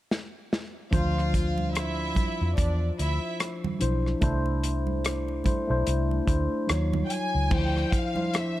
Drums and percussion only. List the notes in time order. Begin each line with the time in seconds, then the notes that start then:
0.11 snare
0.53 snare
0.93 kick, closed hi-hat, low conga
1.18 cross-stick
1.34 kick, closed hi-hat
1.58 high conga
1.75 cross-stick, closed hi-hat
2.15 kick, closed hi-hat, high conga
2.57 kick, closed hi-hat, muted conga
2.99 closed hi-hat
3.40 cross-stick, closed hi-hat
3.64 muted conga, high conga, low conga
3.81 closed hi-hat
4.06 cross-stick
4.22 kick, closed hi-hat, muted conga, low conga
4.46 muted conga
4.64 closed hi-hat
4.87 high conga
5.04 cross-stick, closed hi-hat
5.28 muted conga
5.44 kick, closed hi-hat, high conga
5.86 closed hi-hat, muted conga
6.11 muted conga
6.28 kick, closed hi-hat
6.69 cross-stick, closed hi-hat
6.93 muted conga, high conga, low conga
7.10 closed hi-hat
7.51 kick, crash, muted conga, low conga
7.77 cross-stick
7.92 kick, closed hi-hat
8.16 high conga
8.34 cross-stick, closed hi-hat, muted conga